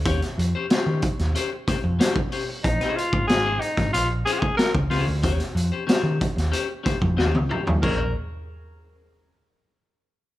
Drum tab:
CC |----------------|----------------|----------------|x---------------|
HH |xxx-x-xxx-x-x-o-|xxx-x-xxx-x-x-o-|xxx-x-xxx-x-----|----------------|
SD |-o--o--o--o-o---|-o--o--o----o-o-|-o--o--o--o-o---|----------------|
T1 |----------------|----------------|-------------o--|----------------|
T2 |----------------|----------------|--------------o-|----------------|
FT |----------------|----------------|---------------o|----------------|
BD |o-----o---o--o--|o--o---o---o-o--|o-----o---oo----|o---------------|